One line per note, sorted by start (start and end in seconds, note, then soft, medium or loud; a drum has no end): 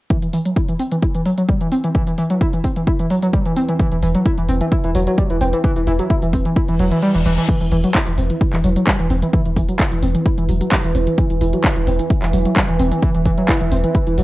0.10 0.17 E3 loud
0.10 7.47 E3 medium
0.10 kick loud
0.10 closed hi-hat medium
0.22 0.27 E3 medium
0.22 closed hi-hat medium
0.33 0.38 E3 loud
0.33 open hi-hat loud
0.45 0.50 F#3 medium
0.45 closed hi-hat medium
0.56 0.61 E4 medium
0.56 kick loud
0.56 closed hi-hat medium
0.69 0.73 E3 medium
0.69 closed hi-hat medium
0.79 0.82 C4 medium
0.79 open hi-hat loud
0.92 0.96 E3 medium
0.92 closed hi-hat medium
1.02 1.05 E4 medium
1.02 kick loud
1.02 closed hi-hat medium
1.15 1.21 E3 medium
1.15 closed hi-hat medium
1.25 1.30 F#3 medium
1.25 open hi-hat loud
1.38 1.42 F#3 medium
1.38 closed hi-hat medium
1.49 1.53 G3 medium
1.49 kick loud
1.49 closed hi-hat medium
1.61 1.67 E3 medium
1.61 closed hi-hat medium
1.72 1.75 C4 medium
1.72 open hi-hat loud
1.84 1.88 E3 medium
1.84 closed hi-hat medium
1.95 2.02 E3 loud
1.95 kick loud
1.95 closed hi-hat medium
2.07 2.11 E3 medium
2.07 closed hi-hat medium
2.18 2.23 E3 loud
2.18 open hi-hat loud
2.30 2.34 F#3 medium
2.30 closed hi-hat medium
2.41 2.46 E4 medium
2.41 kick loud
2.41 closed hi-hat medium
2.53 2.57 E3 medium
2.53 closed hi-hat medium
2.64 2.67 C4 medium
2.64 kick medium
2.64 open hi-hat loud
2.76 2.80 E3 medium
2.76 closed hi-hat medium
2.87 2.90 E4 medium
2.87 kick loud
2.87 closed hi-hat medium
2.99 3.06 E3 medium
2.99 closed hi-hat medium
3.10 3.15 F#3 medium
3.10 open hi-hat loud
3.22 3.27 F#3 medium
3.22 closed hi-hat medium
3.33 3.38 G3 medium
3.33 kick loud
3.33 closed hi-hat medium
3.46 3.52 E3 medium
3.46 closed hi-hat medium
3.56 3.59 C4 medium
3.56 open hi-hat loud
3.69 3.73 E3 medium
3.69 closed hi-hat medium
3.79 3.87 E3 loud
3.79 kick loud
3.79 closed hi-hat medium
3.92 4.02 E1 medium
3.92 3.96 E3 medium
3.92 closed hi-hat medium
4.03 4.14 E1 medium
4.03 4.07 E3 loud
4.03 open hi-hat loud
4.15 4.19 F#3 medium
4.15 closed hi-hat medium
4.26 4.30 E4 medium
4.26 kick loud
4.26 closed hi-hat medium
4.38 4.48 E1 medium
4.38 4.42 E3 medium
4.38 closed hi-hat medium
4.49 4.61 E1 loud
4.49 4.52 C4 medium
4.49 open hi-hat loud
4.61 4.65 E3 medium
4.61 closed hi-hat medium
4.72 4.75 E4 medium
4.72 kick loud
4.72 closed hi-hat medium
4.84 4.94 E1 medium
4.84 4.90 E3 medium
4.84 closed hi-hat medium
4.95 5.07 E1 loud
4.95 5.00 F#3 medium
4.95 open hi-hat loud
5.07 5.11 F#3 medium
5.07 closed hi-hat medium
5.18 5.23 G3 medium
5.18 kick loud
5.18 closed hi-hat medium
5.30 5.40 E1 medium
5.30 5.36 E3 medium
5.30 closed hi-hat medium
5.41 5.53 E1 loud
5.41 5.44 C4 medium
5.41 open hi-hat loud
5.53 5.57 E3 medium
5.53 closed hi-hat medium
5.64 5.71 E3 loud
5.64 kick loud
5.64 closed hi-hat medium
5.76 5.87 E1 medium
5.76 5.80 E3 medium
5.76 closed hi-hat medium
5.87 5.99 E1 medium
5.87 5.92 E3 loud
5.87 open hi-hat loud
5.99 6.04 F#3 medium
5.99 closed hi-hat medium
6.10 6.15 E4 medium
6.10 kick loud
6.10 closed hi-hat medium
6.22 6.33 E1 medium
6.22 6.27 E3 medium
6.22 closed hi-hat medium
6.33 6.45 E1 loud
6.33 6.36 C4 medium
6.33 kick medium
6.33 open hi-hat loud
6.45 6.50 E3 medium
6.45 closed hi-hat medium
6.56 6.59 E4 medium
6.56 kick loud
6.56 closed hi-hat medium
6.56 reverse cymbal medium
6.69 6.79 E1 medium
6.69 6.75 E3 medium
6.69 closed hi-hat medium
6.79 6.91 E1 loud
6.79 6.84 F#3 medium
6.79 open hi-hat loud
6.92 6.98 E3 medium
6.92 closed hi-hat medium
7.03 7.07 G3 loud
7.03 closed hi-hat medium
7.15 7.25 E1 medium
7.15 7.17 E3 medium
7.15 closed hi-hat medium
7.26 7.38 E1 loud
7.26 7.30 E3 loud
7.26 open hi-hat loud
7.38 7.42 E3 medium
7.38 closed hi-hat medium
7.49 14.23 E3 medium
7.49 7.56 E3 loud
7.49 kick loud
7.49 closed hi-hat medium
7.49 crash loud
7.61 7.71 E1 medium
7.61 7.65 E3 medium
7.61 closed hi-hat medium
7.72 7.84 E1 medium
7.72 7.76 E3 loud
7.72 open hi-hat loud
7.84 7.88 F#3 medium
7.84 closed hi-hat medium
7.95 8.00 E4 medium
7.95 kick loud
7.95 clap loud
7.95 closed hi-hat medium
8.07 8.17 E1 medium
8.07 8.11 E3 medium
8.07 closed hi-hat medium
8.18 8.30 E1 loud
8.18 8.21 C4 medium
8.18 open hi-hat loud
8.30 8.34 E3 medium
8.30 closed hi-hat medium
8.41 8.44 E4 medium
8.41 kick loud
8.41 closed hi-hat medium
8.53 8.63 E1 medium
8.53 8.59 E3 medium
8.53 clap soft
8.53 closed hi-hat medium
8.64 8.76 E1 loud
8.64 8.69 F#3 medium
8.64 open hi-hat loud
8.76 8.80 F#3 medium
8.76 closed hi-hat medium
8.87 8.92 G3 medium
8.87 kick loud
8.87 clap loud
8.87 closed hi-hat medium
8.99 9.10 E1 medium
8.99 9.06 E3 medium
8.99 closed hi-hat medium
9.10 9.22 E1 loud
9.10 9.13 C4 medium
9.10 open hi-hat loud
9.22 9.27 E3 medium
9.22 closed hi-hat medium
9.33 9.40 E3 loud
9.33 kick loud
9.33 closed hi-hat medium
9.45 9.56 E1 medium
9.45 9.50 E3 medium
9.45 closed hi-hat medium
9.56 9.68 E1 loud
9.56 9.61 E3 loud
9.56 kick medium
9.56 open hi-hat loud
9.68 9.73 F#3 medium
9.68 closed hi-hat medium
9.79 9.84 E4 medium
9.79 kick loud
9.79 clap loud
9.79 closed hi-hat medium
9.92 10.02 E1 medium
9.92 9.96 E3 medium
9.92 closed hi-hat medium
10.02 10.14 E1 loud
10.02 10.05 C4 medium
10.02 open hi-hat loud
10.15 10.19 E3 medium
10.15 closed hi-hat medium
10.26 10.28 E4 medium
10.26 kick loud
10.26 closed hi-hat medium
10.38 10.48 E1 medium
10.38 10.44 E3 medium
10.38 closed hi-hat medium
10.49 10.61 E1 loud
10.49 10.53 F#3 medium
10.49 open hi-hat loud
10.61 10.65 F#3 medium
10.61 closed hi-hat medium
10.72 10.76 G3 medium
10.72 kick loud
10.72 clap loud
10.72 closed hi-hat medium
10.84 10.94 E1 medium
10.84 10.90 E3 medium
10.84 closed hi-hat medium
10.95 11.07 E1 loud
10.95 10.98 C4 medium
10.95 open hi-hat loud
11.07 11.11 E3 medium
11.07 closed hi-hat medium
11.18 11.25 E3 loud
11.18 kick loud
11.18 closed hi-hat medium
11.30 11.40 E1 medium
11.30 11.34 E3 medium
11.30 closed hi-hat medium
11.41 11.53 E1 medium
11.41 11.46 E3 loud
11.41 open hi-hat loud
11.53 11.57 F#3 medium
11.53 closed hi-hat medium
11.64 11.69 E4 medium
11.64 kick loud
11.64 clap loud
11.64 closed hi-hat medium
11.76 11.87 E1 medium
11.76 11.80 E3 medium
11.76 closed hi-hat medium
11.87 11.99 E1 loud
11.87 11.90 C4 medium
11.87 open hi-hat loud
11.99 12.04 E3 medium
11.99 closed hi-hat medium
12.10 12.13 E4 medium
12.10 kick loud
12.10 closed hi-hat medium
12.22 12.33 E1 medium
12.22 12.29 E3 medium
12.22 clap soft
12.22 closed hi-hat medium
12.33 12.45 E1 loud
12.33 12.38 F#3 medium
12.33 open hi-hat loud
12.45 12.50 F#3 medium
12.45 closed hi-hat medium
12.56 12.61 G3 medium
12.56 kick loud
12.56 clap loud
12.56 closed hi-hat medium
12.69 12.79 E1 medium
12.69 12.75 E3 medium
12.69 closed hi-hat medium
12.79 12.91 E1 medium
12.79 12.82 C4 medium
12.79 open hi-hat loud
12.92 12.96 E3 medium
12.92 closed hi-hat medium
13.03 13.10 E3 loud
13.03 kick loud
13.03 closed hi-hat medium
13.15 13.25 E1 medium
13.15 13.19 E3 medium
13.15 closed hi-hat medium
13.26 13.38 E1 medium
13.26 13.30 E3 loud
13.26 kick medium
13.26 open hi-hat loud
13.38 13.42 F#3 medium
13.38 closed hi-hat medium
13.49 13.53 E4 medium
13.49 kick loud
13.49 clap loud
13.49 closed hi-hat medium
13.61 13.71 E1 medium
13.61 13.65 E3 medium
13.61 closed hi-hat medium
13.72 13.84 E1 loud
13.72 13.75 C4 medium
13.72 open hi-hat loud
13.84 13.88 E3 medium
13.84 closed hi-hat medium
13.95 13.98 E4 medium
13.95 kick loud
13.95 closed hi-hat medium
14.07 14.17 E1 medium
14.07 14.13 E3 medium
14.07 closed hi-hat medium
14.18 14.23 E1 loud
14.18 14.23 F#3 medium
14.18 open hi-hat loud